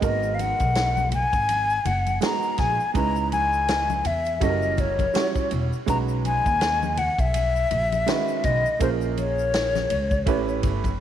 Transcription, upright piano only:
0.00 1.06 G#3 medium
0.00 0.10 A#3 soft
0.00 1.06 D#4 medium
0.00 1.07 F#4 medium
0.00 1.07 A#4 medium
0.00 0.22 B4 soft
0.00 0.22 D#5 medium
0.08 1.09 B3 medium
2.21 2.75 G#3 medium
2.21 2.75 B3 medium
2.21 2.76 D#4 medium
2.21 2.76 F#4 medium
2.21 2.76 G#4 medium
2.94 3.99 G#3 medium
2.94 3.99 C#4 medium
2.94 3.99 D#4 medium
2.94 3.99 E4 medium
2.94 4.00 B4 medium
4.40 5.02 G3 medium
4.40 5.02 C#4 medium
4.40 5.02 E4 medium
4.40 5.02 F#4 medium
4.40 4.50 A4 medium
4.49 5.06 A#4 medium
5.13 5.68 G3 medium
5.13 5.68 C#4 medium
5.13 5.68 E4 medium
5.13 5.69 F#4 medium
5.13 5.69 C#5 medium
5.86 6.91 G#3 medium
5.86 6.91 C#4 medium
5.86 6.92 D#4 medium
5.86 6.92 F#4 medium
5.86 6.92 B4 medium
8.06 8.61 D#3 medium
8.06 8.61 G#3 medium
8.06 8.61 C#4 medium
8.06 8.62 F#4 medium
8.06 8.62 B4 medium
8.79 9.84 A#3 medium
8.79 9.84 C#4 medium
8.79 9.85 F4 medium
8.79 9.85 G#4 medium
8.79 9.85 A#4 medium
10.26 10.87 A3 medium
10.26 10.87 C#4 medium
10.26 10.88 E4 medium
10.26 10.88 G4 medium
10.26 10.88 B4 loud

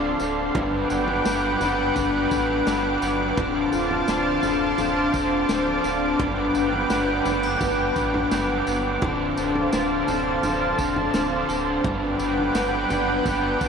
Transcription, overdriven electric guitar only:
0.00 0.20 D3 medium
0.00 0.20 F3 medium
0.00 0.20 C4 medium
0.00 0.20 D4 medium
0.00 0.18 A4 loud
0.19 0.56 C4 soft
0.19 0.55 D4 medium
0.19 0.55 A4 medium
0.55 0.90 G2 medium
0.55 0.91 D3 medium
0.55 0.91 F#3 medium
0.55 0.91 B3 medium
0.55 0.90 D4 medium
0.55 0.88 B4 medium
0.89 1.25 F#3 medium
0.89 1.25 B3 medium
0.89 1.26 D4 medium
0.89 1.25 B4 medium
1.25 1.61 G2 medium
1.25 1.61 D3 medium
1.25 1.61 F#3 medium
1.25 1.61 B3 medium
1.25 1.60 D4 loud
1.25 1.59 B4 loud
1.60 1.94 F#3 soft
1.60 1.95 B3 medium
1.60 1.96 D4 medium
1.60 1.96 B4 medium
1.95 2.31 F#3 medium
1.95 2.32 B3 medium
1.95 2.30 D4 medium
1.95 2.29 B4 medium
2.30 2.66 F#3 medium
2.30 2.66 B3 medium
2.30 2.67 D4 medium
2.30 2.66 B4 medium
2.66 3.02 G2 medium
2.66 3.02 D3 medium
2.66 3.02 F#3 medium
2.66 3.03 B3 loud
2.66 3.02 D4 loud
2.66 3.00 B4 medium
3.01 3.37 F#3 soft
3.01 3.38 B3 medium
3.01 3.37 D4 medium
3.01 3.37 B4 medium
3.37 3.72 D3 medium
3.37 3.73 F3 medium
3.37 3.73 C4 medium
3.37 3.73 D4 loud
3.37 3.70 A4 medium
3.72 4.07 C4 medium
3.72 4.08 D4 medium
3.72 4.08 A4 medium
4.07 4.43 D3 medium
4.07 4.43 F3 medium
4.07 4.44 C4 loud
4.07 4.43 D4 loud
4.07 4.41 A4 loud
4.42 4.77 C4 soft
4.42 4.79 D4 medium
4.42 4.78 A4 medium
4.77 5.13 F3 medium
4.77 5.14 C4 medium
4.77 5.13 D4 medium
4.77 5.11 A4 medium
5.13 5.49 C4 medium
5.13 5.49 D4 medium
5.13 5.49 A4 medium
5.48 5.84 D3 medium
5.48 5.84 F3 medium
5.48 5.85 C4 loud
5.48 5.84 D4 medium
5.48 5.82 A4 loud
5.83 6.20 C4 soft
5.83 6.20 D4 medium
5.83 6.19 A4 medium
6.19 6.55 G2 medium
6.19 6.55 D3 medium
6.19 6.55 F#3 loud
6.19 6.55 B3 medium
6.19 6.54 D4 medium
6.19 6.53 B4 loud
6.54 6.90 F#3 soft
6.54 6.90 B3 medium
6.54 6.90 D4 medium
6.54 6.90 B4 medium
6.90 7.25 G2 medium
6.90 7.26 D3 loud
6.90 7.26 F#3 loud
6.90 7.26 B3 medium
6.90 7.25 D4 loud
6.90 7.24 B4 loud
7.25 7.59 F#3 soft
7.25 7.61 B3 medium
7.25 7.61 D4 medium
7.25 7.61 B4 medium
7.60 7.96 F#3 medium
7.60 7.97 B3 medium
7.60 7.96 D4 medium
7.60 7.94 B4 medium
7.96 8.31 F#3 medium
7.96 8.32 B3 medium
7.96 8.32 D4 medium
7.96 8.31 B4 medium
8.31 8.67 G2 medium
8.31 8.67 D3 medium
8.31 8.67 F#3 medium
8.31 8.68 B3 loud
8.31 8.66 D4 medium
8.31 8.65 B4 loud
8.66 9.02 F#3 soft
8.66 9.03 B3 medium
8.66 9.03 D4 medium
8.66 9.02 B4 medium
9.02 9.37 D3 medium
9.02 9.38 F3 medium
9.02 9.38 C4 medium
9.02 9.37 D4 loud
9.02 9.36 A4 loud
9.37 9.72 C4 medium
9.37 9.73 D4 medium
9.37 9.72 A4 medium
9.72 10.08 D3 medium
9.72 10.08 F3 loud
9.72 10.08 C4 loud
9.72 10.08 D4 loud
9.72 10.06 A4 loud
10.07 10.43 C4 medium
10.07 10.44 D4 soft
10.07 10.43 A4 medium
10.43 10.78 F3 medium
10.43 10.79 C4 medium
10.43 10.79 D4 medium
10.43 10.77 A4 medium
10.78 11.14 C4 medium
10.78 11.14 D4 medium
10.78 11.14 A4 medium
11.14 11.49 D3 medium
11.14 11.49 F3 loud
11.14 11.50 C4 loud
11.14 11.49 D4 medium
11.14 11.47 A4 medium
11.49 11.85 C4 medium
11.49 11.85 D4 soft
11.49 11.84 A4 medium
11.84 12.20 G2 medium
11.84 12.20 D3 medium
11.84 12.20 F#3 medium
11.84 12.20 B3 medium
11.84 12.19 D4 medium
11.84 12.18 B4 loud
12.19 12.54 F#3 medium
12.19 12.55 B3 medium
12.19 12.55 D4 medium
12.19 12.55 B4 medium
12.54 12.90 G2 loud
12.54 12.91 D3 loud
12.54 12.91 F#3 medium
12.54 12.91 B3 loud
12.54 12.90 D4 loud
12.54 12.89 B4 loud
12.90 13.23 F#3 medium
12.90 13.25 B3 soft
12.90 13.26 D4 medium
12.90 13.25 B4 medium
13.25 13.61 F#3 medium
13.25 13.61 B3 medium
13.25 13.60 D4 medium
13.25 13.59 B4 medium
13.60 13.68 F#3 medium
13.60 13.68 B3 medium
13.60 13.68 D4 medium
13.60 13.68 B4 medium

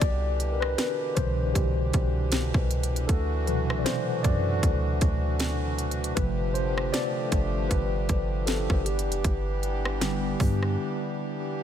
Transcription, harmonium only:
0.00 3.06 B2 medium
0.00 8.82 D3 medium
0.00 6.13 E3 medium
0.00 8.82 D4 medium
0.00 3.05 G4 medium
3.09 6.14 A3 medium
3.09 6.14 F#4 medium
6.17 8.84 F3 medium
6.17 8.83 A3 medium
6.17 11.63 G4 medium
8.86 11.63 E3 medium
8.86 11.63 G3 medium
8.86 11.63 B3 medium
8.86 11.63 D4 medium

